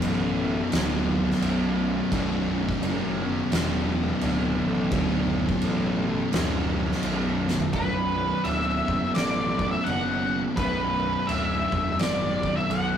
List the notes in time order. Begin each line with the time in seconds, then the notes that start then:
Already playing: B1 F#2 B2
0.02 A1, crash
0.46 B1 F#2 B2
0.71 D1 B1 F#2 B2, snare, crash
1.31 snare
1.41 B0, crash
2.11 B0 B1 F#2 B2, kick, crash
2.69 kick
2.82 F#1, crash
3.25 B1 F#2 B2
3.51 E1 B1 F#2 B2, snare, crash
4.21 D1, crash
4.66 A1
4.91 D1 B1 F#2 B2, kick, crash
5.49 kick
5.62 A1, crash
6.04 B1 F#2 B2
6.31 D1 B1 F#2 B2, snare, crash
6.92 snare
7.03 B0, crash
7.48 snare
7.60 floor tom
7.73 B0 B1 F#2 B2 B4, kick, crash
8.44 D1 E5, crash
8.88 F#1, kick
9.14 A1 D5, snare, crash
9.57 B1 F#2 B2, kick
9.71 E5
9.84 F#1 B1 F#2 B2 F#5, crash
10.56 B0 B1 F#2 B2 B4, kick, crash
11.27 D1 E5, crash
11.72 E1, kick
11.99 G#1 D5, snare, crash
12.42 B1 F#2 B2, kick
12.56 E5
12.69 B1 F#2 B2 F#5, crash